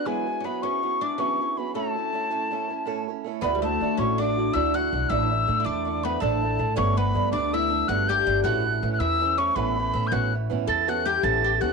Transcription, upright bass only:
\new Staff \with { instrumentName = "Upright bass" } { \clef bass \time 9/8 \key a \major \tempo 4. = 108 r1 r8 | r1 r8 | \key d \major d,4 d8 a,,4. d,4 b,,8 | a,,4 a,8 e,4. a,,4 a,8 |
g,,4 g,8 d,4. g,,4 g,,8 | a,,4 a,8 e,4. a,,4 a,8 | a,,4 a,8 e,4. a,,4 d,8 | }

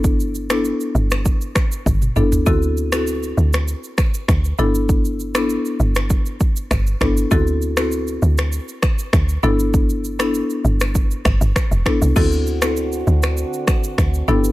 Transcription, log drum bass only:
\new Staff \with { instrumentName = "Log drum bass" } { \clef bass \time 4/4 \key d \mixolydian \tempo 4 = 99 g,,4. g,,8. r8. g,,8 g,,8 | d,4. d,8. r8. d,8 g,,8~ | g,,4. g,,8. r8. g,,8 g,,8 | d,4. d,8. r8. d,8 g,,8~ |
g,,4. g,,4 g,,16 g,,16 r16 e,,16 r16 c,16 | d,4. d,8. r8. d,8 g,,8 | }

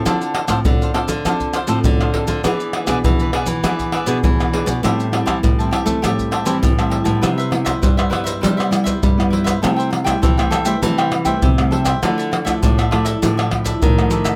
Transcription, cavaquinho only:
\new Staff \with { instrumentName = "Cavaquinho" } { \time 4/4 \key a \minor \tempo 4 = 100 <d' a' c'' f''>8 <d' a' c'' f''>16 <d' a' c'' f''>16 r16 <a' c'' f''>16 <d' a' c'' f''>16 <a' c'' f''>16 <d' a' c'' f''>8 <d' a' c'' f''>16 <d' a' c'' f''>16 r16 <a' c'' f''>16 <d' a' c'' f''>16 <a' c'' f''>16 | <e' gis' b' d''>8 <e' gis' b' d''>16 <e' gis' b' d''>16 r16 <gis' b' d''>16 <e' gis' b' d''>16 <gis' b' d''>16 <e' gis' b' d''>8 <e' gis' b' d''>16 <e' gis' b' d''>16 r16 <gis' b' d''>16 <e' gis' b' d''>16 <gis' b' d''>16 | <g' c'' e'' a''>8 <g' c'' e'' a''>16 <g' c'' e'' a''>16 r16 <c'' e'' a''>16 <g' c'' e'' a''>16 <c'' e'' a''>16 <g' c'' e'' a''>8 <g' c'' e'' a''>16 <g' c'' e'' a''>16 r16 <c'' e'' a''>16 <g' c'' e'' a''>16 <c'' e'' a''>16 | <e' b' c'' e''>16 <b' c'' e''>16 r16 <b' c'' e''>16 <e' b' c'' e''>16 <b' c'' e''>16 <e' b' c'' e''>16 <b' c'' e''>16 <e' b' c'' e''>16 <b' c'' e''>16 r16 <b' c'' e''>8. <e' b' c'' e''>16 <b' c'' e''>16 |
<a' c'' e'' g''>16 <c'' e'' g''>16 r16 <c'' e'' g''>16 <a' c'' e'' g''>16 <c'' e'' g''>16 <a' c'' e'' g''>16 <c'' e'' g''>16 <a' c'' e'' g''>16 <c'' e'' g''>16 r16 <c'' e'' g''>8. <a' c'' e'' g''>16 <c'' e'' g''>16 | <f' a' d'' e''>16 <a' d'' e''>16 r16 <a' d'' e''>16 <f' a' d'' e''>16 <a' d'' e''>16 <f' a' d'' e''>16 <a' d'' e''>16 <f' a' d'' e''>16 <a' d'' e''>16 r16 <a' d'' e''>8. <f' a' d'' e''>16 <a' d'' e''>16 | }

